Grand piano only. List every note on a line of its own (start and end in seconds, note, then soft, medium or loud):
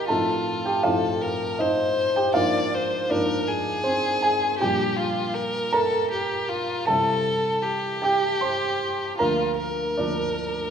0.00 0.12 D4 soft
0.00 0.10 D#4 soft
0.00 0.12 A#4 medium
0.00 0.11 D5 medium
0.00 0.11 D#5 soft
0.00 0.12 A#5 medium
0.08 0.82 A2 soft
0.08 0.82 F3 soft
0.08 0.82 C4 soft
0.08 0.82 D#4 soft
0.08 0.62 A4 soft
0.08 0.65 A5 medium
0.65 0.83 G4 soft
0.65 0.84 G5 medium
0.83 2.31 A2 soft
0.83 2.31 F3 soft
0.83 2.31 C4 soft
0.83 1.58 D#4 soft
0.83 1.55 F4 soft
0.83 1.58 F5 medium
1.59 2.12 D#4 soft
1.59 2.16 D#5 medium
2.16 2.34 G4 medium
2.16 2.35 G5 medium
2.34 3.08 G#2 soft
2.34 3.08 F3 soft
2.34 3.08 A#3 soft
2.34 3.08 D4 soft
2.34 3.06 F4 soft
2.34 3.09 F5 medium
3.10 4.56 G#2 soft
3.10 4.56 F3 soft
3.10 4.56 A#3 soft
3.10 3.81 D4 soft
3.10 3.85 D5 medium
3.84 4.20 C4 soft
3.84 4.22 C5 medium
4.22 4.58 G#4 medium
4.22 4.60 G#5 medium
4.61 6.85 A#2 soft
4.61 6.85 F3 soft
4.61 6.85 G3 soft
4.61 6.85 D4 soft
4.61 5.70 G4 medium
4.61 5.74 G5 medium
5.73 6.84 A#4 medium
5.73 6.87 A#5 medium
6.87 9.16 C3 soft
6.87 9.16 E3 soft
6.87 9.16 G3 soft
6.87 9.17 C4 soft
6.87 7.99 A4 medium
6.87 8.02 A5 medium
8.02 8.40 G4 medium
8.02 8.42 G5 medium
8.41 8.78 C5 soft
8.41 8.81 C6 medium
9.19 9.96 D2 soft
9.19 9.96 F3 soft
9.19 9.96 A#3 soft
9.19 9.94 A#4 medium
9.19 9.98 A#5 medium
9.97 10.70 D2 soft
9.97 10.70 F3 soft
9.97 10.70 A#3 soft
9.97 10.70 D4 soft
9.97 10.70 D5 medium